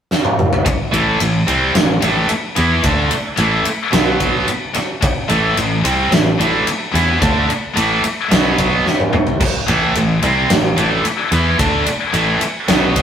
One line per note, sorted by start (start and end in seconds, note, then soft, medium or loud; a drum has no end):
0.11 snare medium
0.25 high tom medium
0.39 mid tom medium
0.53 floor tom loud
0.66 muted fingered electric bass stroke soft
0.66 muted distorted electric guitar stroke medium
0.66 kick loud
0.66 ride loud
0.93 1.18 A1 medium
0.93 1.19 A2 medium
0.93 1.19 E3 loud
0.93 1.20 A3 medium
0.93 ride medium
1.20 1.46 A1 medium
1.20 1.42 A2 medium
1.20 1.42 E3 medium
1.20 ride loud
1.47 1.73 C2 medium
1.47 1.74 C3 medium
1.47 1.74 G3 loud
1.47 1.74 C4 loud
1.47 ride medium
1.74 2.00 A1 medium
1.74 1.96 A2 medium
1.74 1.97 E3 medium
1.74 snare loud
1.74 ride loud
2.00 2.28 A1 medium
2.00 2.27 A2 medium
2.00 2.28 E3 medium
2.00 2.28 A3 loud
2.00 ride medium
2.28 muted distorted electric guitar stroke medium
2.28 muted fingered electric bass stroke soft
2.28 ride medium
2.56 2.83 E2 medium
2.56 2.83 E3 medium
2.56 2.83 B3 loud
2.56 2.83 E4 loud
2.56 ride medium
2.83 3.10 D2 medium
2.83 3.10 D3 loud
2.83 3.10 A3 loud
2.83 3.11 D4 loud
2.83 kick loud
2.83 ride loud
3.10 muted distorted electric guitar stroke medium
3.10 muted fingered electric bass stroke soft
3.10 ride medium
3.36 3.64 A1 loud
3.36 3.63 A2 loud
3.36 3.65 E3 loud
3.36 3.65 A3 loud
3.36 ride medium
3.65 muted distorted electric guitar stroke medium
3.65 muted fingered electric bass stroke soft
3.65 ride medium
3.91 4.45 B1 medium
3.91 4.46 B2 medium
3.91 4.47 F#3 loud
3.91 4.47 B3 loud
3.91 snare loud
3.91 ride medium
4.20 kick medium
4.20 ride medium
4.47 muted distorted electric guitar stroke medium
4.47 muted fingered electric bass stroke soft
4.47 ride medium
4.74 muted distorted electric guitar stroke medium
4.74 muted fingered electric bass stroke soft
4.74 snare soft
4.74 ride medium
5.01 muted distorted electric guitar stroke medium
5.01 muted fingered electric bass stroke soft
5.01 kick loud
5.01 ride loud
5.28 5.56 A1 medium
5.28 5.55 A2 medium
5.28 5.55 E3 loud
5.28 5.56 A3 loud
5.28 ride medium
5.56 5.83 A1 medium
5.56 5.79 A2 medium
5.56 5.79 E3 medium
5.56 ride loud
5.83 6.10 C2 loud
5.83 6.10 C3 medium
5.83 6.10 G3 medium
5.83 6.11 C4 loud
5.83 ride medium
6.10 6.37 A1 medium
6.10 6.33 A2 medium
6.10 6.33 E3 medium
6.10 snare loud
6.10 ride loud
6.38 6.65 A1 medium
6.38 6.65 A2 medium
6.38 6.66 E3 medium
6.38 6.66 A3 loud
6.38 ride medium
6.66 muted distorted electric guitar stroke medium
6.66 muted fingered electric bass stroke soft
6.66 ride loud
6.92 7.20 E2 loud
6.92 7.19 E3 medium
6.92 7.19 B3 loud
6.92 7.20 E4 medium
6.92 snare soft
6.92 ride medium
7.20 7.47 D2 medium
7.20 7.47 D3 medium
7.20 7.47 A3 loud
7.20 7.48 D4 loud
7.20 kick loud
7.20 ride loud
7.48 muted distorted electric guitar stroke medium
7.48 muted fingered electric bass stroke soft
7.48 ride medium
7.74 8.02 A1 medium
7.74 8.00 A2 medium
7.74 8.02 E3 medium
7.74 8.02 A3 loud
7.74 ride loud
8.02 muted distorted electric guitar stroke medium
8.02 muted fingered electric bass stroke soft
8.02 ride medium
8.29 8.82 B1 loud
8.29 8.84 B2 medium
8.29 8.84 F#3 loud
8.29 8.84 B3 loud
8.29 snare loud
8.29 ride medium
8.58 kick medium
8.58 ride medium
8.86 muted distorted electric guitar stroke medium
8.86 muted fingered electric bass stroke soft
8.86 snare medium
9.00 high tom medium
9.13 muted fingered electric bass stroke soft
9.13 muted distorted electric guitar stroke medium
9.13 mid tom medium
9.27 floor tom medium
9.41 muted fingered electric bass stroke soft
9.41 muted distorted electric guitar stroke medium
9.41 kick loud
9.41 crash medium
9.67 9.94 A1 medium
9.67 9.94 A2 medium
9.67 9.94 E3 loud
9.67 9.94 A3 loud
9.67 ride medium
9.95 10.21 A1 medium
9.95 10.17 A2 medium
9.95 10.17 E3 medium
9.95 ride medium
10.22 10.48 C2 loud
10.22 10.49 C3 loud
10.22 10.49 G3 medium
10.22 10.49 C4 loud
10.22 ride medium
10.50 10.76 A1 medium
10.50 10.72 A2 medium
10.50 10.72 E3 medium
10.50 snare loud
10.50 ride loud
10.76 11.02 A1 medium
10.76 11.02 A2 medium
10.76 11.04 E3 medium
10.76 11.04 A3 medium
10.76 ride medium
11.04 muted distorted electric guitar stroke medium
11.04 muted fingered electric bass stroke soft
11.04 ride loud
11.32 11.57 E2 medium
11.32 11.58 E3 medium
11.32 11.57 B3 loud
11.32 11.59 E4 loud
11.32 ride medium
11.58 11.84 D2 medium
11.58 11.85 D3 medium
11.58 11.85 A3 loud
11.58 11.85 D4 loud
11.58 kick loud
11.58 ride loud
11.85 muted distorted electric guitar stroke medium
11.85 muted fingered electric bass stroke soft
11.85 ride medium
12.12 12.39 A1 loud
12.12 12.39 A2 loud
12.12 12.40 E3 loud
12.12 12.40 A3 loud
12.12 ride loud
12.40 muted distorted electric guitar stroke medium
12.40 muted fingered electric bass stroke soft
12.40 ride medium
12.68 13.02 B1 loud
12.68 13.02 B2 medium
12.68 13.02 F#3 medium
12.68 13.02 B3 loud
12.68 snare loud
12.68 ride loud
12.96 kick medium
12.96 ride medium